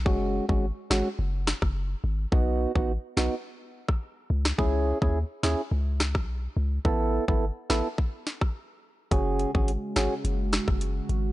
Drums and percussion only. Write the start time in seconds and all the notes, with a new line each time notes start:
0.06 kick
0.49 kick
0.91 cross-stick, snare
1.47 cross-stick, snare
1.62 kick, cross-stick
2.32 kick
2.75 kick
3.17 cross-stick, snare
3.89 kick, cross-stick
4.45 cross-stick, snare
4.59 kick
5.02 kick
5.43 cross-stick, snare
6.00 cross-stick, snare
6.15 kick, cross-stick
6.85 kick
7.28 kick
7.70 cross-stick, snare
7.98 kick
8.27 snare
8.41 kick, cross-stick
9.11 kick, closed hi-hat
9.39 closed hi-hat
9.55 kick
9.68 closed hi-hat
9.96 cross-stick, snare, closed hi-hat
10.25 closed hi-hat
10.53 cross-stick, snare, closed hi-hat
10.68 kick, cross-stick
10.81 closed hi-hat
11.09 closed hi-hat